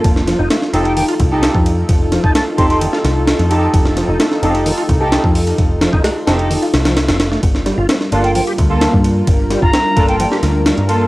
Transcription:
<<
  \new Staff \with { instrumentName = "Flute" } { \time 4/4 \key f \mixolydian \tempo 4 = 130 r4. r16 g''16 g''16 r4. r16 | r8. a''16 a''16 r16 c'''16 c'''16 r2 | r1 | r1 |
r4. r16 g''16 g''16 r4. r16 | r8. bes''4 g''16 g''16 r4. r16 | }
  \new Staff \with { instrumentName = "String section" } { \time 4/4 \key f \mixolydian r4. <ees' g' a'>16 r4 <ees' g' a'>16 r4 | r4. <ees' g' a'>16 r4. r16 <ees' g' a'>16 r16 | r4. <ees' g' a'>16 r4 <ees' g' a'>16 r4 | r4. <ees' g' a'>16 r2 r16 |
r4. <bes f' a'>16 r4 <bes f' a'>16 r4 | r4. <bes f' a'>16 r4. r16 <bes f' a'>16 r16 | }
  \new Staff \with { instrumentName = "Analog synth pad" } { \time 4/4 \key f \mixolydian <ees' f' a'>1~ | <ees' f' a'>1~ | <ees' f' a'>1~ | <ees' f' a'>1 |
<g d' f' bes'>1~ | <g d' f' bes'>1 | }
  \new Staff \with { instrumentName = "Tonewheel organ" } { \time 4/4 \key f \mixolydian r8 f16 ees'16 a16 r16 c'16 r16 ees16 f'16 r4. | r8 f16 ees'16 a16 r16 c'16 r16 ees16 f'16 r4. | r8 f16 ees'16 a16 r16 c'16 r16 ees16 f'16 r4. | r8 f16 ees'16 a16 r16 c'16 r16 ees16 f'16 r16 f16 r16 c'16 r16 a16 |
r8 g16 f'16 c'16 r16 d'16 r16 f16 g'16 r4. | r8 g16 f'16 c'16 r16 d'16 r16 f16 g'16 r4. | }
  \new Staff \with { instrumentName = "Picked electric bass" } { \clef bass \time 4/4 \key f \mixolydian f,,8 r16 f,,16 r8 f,,8 r8 c,8 r16 f,8 r16 | f,,8 r16 f,,16 r8 f,,8 r8 c,8 r16 f,8 r16 | f,,8 r16 f,,16 r8 f,,8 r8 c,8 r16 f,8 r16 | f,,8 r16 f,,16 r8 f,,8 r8 c,8. f,,8 r16 |
g,,8 r16 g,,16 r8 g,,8 r8 d,8 r16 g,8 r16 | g,,8 r16 g,,16 r8 g,,8 r8 d,8 r16 g,8 r16 | }
  \new DrumStaff \with { instrumentName = "Drums" } \drummode { \time 4/4 <bd cymr>16 sn16 <cymr sn>8 <cymr sn>16 sn16 cymr16 cymr16 hho16 cymr16 <bd cymr>8 <cymr sn>16 bd16 cymr8 | <bd cymr>8 <cymr sn>16 bd16 <cymr sn>8 <bd cymr>16 cymr16 cymr16 sn16 <cymr sn>8 <cymr sn>16 cymr16 cymr8 | <bd cymr>16 sn16 <cymr sn>8 <cymr sn>16 sn16 cymr16 cymr16 hho16 cymr16 <bd cymr>8 <cymr sn>16 bd16 hho16 cymr16 | <bd cymr>8 <cymr sn>16 bd16 <cymr sn>8 <cymr sn>16 cymr16 hho16 cymr16 <cymr sn>16 <cymr sn>16 <cymr sn>16 <cymr sn>16 <cymr sn>16 sn16 |
<bd cymr>16 sn16 <cymr sn>8 <cymr sn>16 sn16 cymr16 cymr16 hho16 cymr16 <bd cymr>8 <cymr sn>16 bd16 cymr8 | <bd cymr>8 <cymr sn>16 bd16 <cymr sn>8 <bd cymr>16 cymr16 cymr16 sn16 <cymr sn>8 <cymr sn>16 cymr16 cymr8 | }
>>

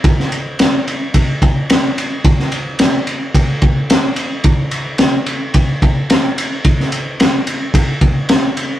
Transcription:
\new DrumStaff \with { instrumentName = "Drums" } \drummode { \time 4/4 \tempo 4 = 109 <bd cymr>16 sn16 cymr8 <cymr sn>8 cymr8 <bd cymr>8 <bd cymr>8 <cymr sn>8 cymr8 | <bd cymr>16 sn16 cymr8 <cymr sn>8 cymr8 <bd cymr>8 <bd cymr>8 <cymr sn>8 cymr8 | <bd cymr>8 cymr8 <cymr sn>8 cymr8 <bd cymr>8 <bd cymr>8 <cymr sn>8 cymr8 | <bd cymr>16 sn16 cymr8 <cymr sn>8 cymr8 <bd cymr>8 <bd cymr>8 <cymr sn>8 cymr8 | }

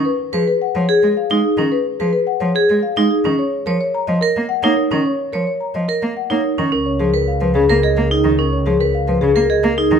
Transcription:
<<
  \new Staff \with { instrumentName = "Marimba" } { \time 3/4 \key fis \major \tempo 4 = 108 b'16 r16 gis'16 b'16 fis''16 cis''16 gis'16 r16 eis''16 r16 gis'16 r16 | b'16 r16 gis'16 b'16 fis''16 cis''16 gis'16 r16 eis''16 r16 gis'16 r16 | cis''16 r16 ais'16 cis''16 ais''16 dis''16 ais'16 r16 fis''16 cis''16 ais'16 r16 | cis''16 r16 ais'16 cis''16 ais''16 dis''16 ais'16 r16 fis''16 cis''16 ais'16 r16 |
\key des \mixolydian bes'16 des''16 aes'16 bes'16 f''16 ces''16 aes'16 r16 ees''16 bes'16 aes'16 r16 | bes'16 des''16 aes'16 bes'16 f''16 ces''16 aes'16 r16 ees''16 bes'16 aes'16 r16 | }
  \new Staff \with { instrumentName = "Vibraphone" } { \time 3/4 \key fis \major r8 b'16 r8. gis'16 r8 dis'16 r16 cis'16 | r8 b'16 r8. gis'16 r8 dis'16 r16 cis'16 | r8 cis''16 r8. ais'16 r8 dis'16 r16 cis'16 | r8 cis''16 r8. ais'16 r8 dis'16 r16 cis'16 |
\key des \mixolydian des'16 r8 ces''16 r8. bes'16 aes'16 r16 ees'16 r16 | des'16 r8 ces''16 r8. bes'16 aes'16 r16 ees'16 r16 | }
  \new Staff \with { instrumentName = "Cello" } { \clef bass \time 3/4 \key fis \major r8 eis16 r8 eis16 r16 gis16 r16 gis16 r16 dis16 | r8 eis16 r8 eis16 r16 gis16 r16 gis16 r16 dis16 | r8 eis16 r8 eis16 r16 ais16 r16 ais16 r16 dis16 | r8 eis16 r8 eis16 r16 ais16 r16 ais16 r16 dis16 |
\key des \mixolydian r8 f16 r8 f16 des16 bes16 r16 bes16 r16 ees16 | r8 f16 r8 f16 des16 bes16 r16 bes16 r16 ees16 | }
  \new Staff \with { instrumentName = "Double bass" } { \clef bass \time 3/4 \key fis \major r2. | r2. | r2. | r2. |
\key des \mixolydian des,2.~ | des,2. | }
>>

